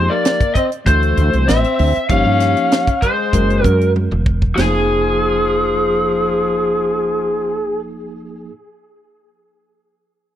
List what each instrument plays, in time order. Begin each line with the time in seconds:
Already playing: tine electric piano F3 A#3 D#4 G4, lead electric guitar C5
0.10 tenor saxophone A#3, lead electric guitar D5
0.25 snare, closed hi-hat
0.41 kick, closed hi-hat
0.54 tenor saxophone C4, lead electric guitar D#5, kick, closed hi-hat
0.72 closed hi-hat
0.85 fretless electric bass D2, tine electric piano E3 A3 D4 F#4, tenor saxophone A3, lead electric guitar C5, kick, closed hi-hat
1.03 closed hi-hat
1.17 fretless electric bass D2, closed hi-hat
1.33 fretless electric bass C2, closed hi-hat
1.48 fretless electric bass A1, tenor saxophone C4, lead electric guitar E5, snare, closed hi-hat
1.64 closed hi-hat
1.79 fretless electric bass D2, open hi-hat
1.95 closed hi-hat
2.09 fretless electric bass G1, tine electric piano F3 A#3 D#4 G4, tenor saxophone C#4, lead electric guitar F5, kick, closed hi-hat
2.25 fretless electric bass G2
2.40 snare, closed hi-hat
2.57 closed hi-hat
2.72 snare, closed hi-hat
2.87 kick, closed hi-hat
3.02 tenor saxophone G#3, lead electric guitar C5, kick, closed hi-hat
3.33 fretless electric bass F#1, tine electric piano G#3 C#4 F#4 A#4, kick, closed hi-hat
3.50 closed hi-hat
3.64 fretless electric bass F#2, tenor saxophone F#3, lead electric guitar A#4, kick, closed hi-hat
3.81 closed hi-hat
3.96 high tom
4.11 fretless electric bass E1, mid tom
4.26 kick
4.42 kick
4.55 fretless electric bass F1, tine electric piano F3 A#3 D#4, tenor saxophone F3, lead electric guitar G#4, snare, crash
4.60 tine electric piano G#4